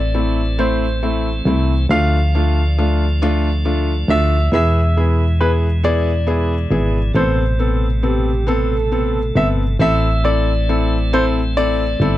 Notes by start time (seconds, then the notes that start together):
Already playing: A1 E3 A3 C4 D5
0.14 A3 C4 E4
0.59 A3 C4 E4 C5
1.03 A3 C4 E4
1.45 C2 A3 C4 E4
1.89 D2 F3 A3 D4 F4 F5
2.35 A3 D4 F4
2.78 A3 D4 F4
3.22 A3 D4 F4
3.65 A3 D4 F4
4.08 D2 A3 D4 F4 E5
4.52 E2 B2 E3 G#3 B3 E4 G#4 E5
4.97 B3 E4 G#4
5.40 B3 E4 G#4 B4
5.83 B3 E4 G#4 D5
6.27 B3 E4 G#4
6.71 G#1 B3 E4 G#4
7.14 A1 C3 A3 B3 C4 A4 C5
7.59 B3 C4 A4
8.02 B3 C4 G4 A4
8.47 B3 C4 A4
8.91 B3 C4 A4
9.36 G1 B3 C4 A4 E5
9.79 A1 E3 A3 C4 E4 A4 E5
10.24 C4 E4 A4 D5
10.69 C4 E4 A4
11.13 C4 E4 A4 C5
11.57 C4 E4 A4 D5
12.00 G1 C4 E4 A4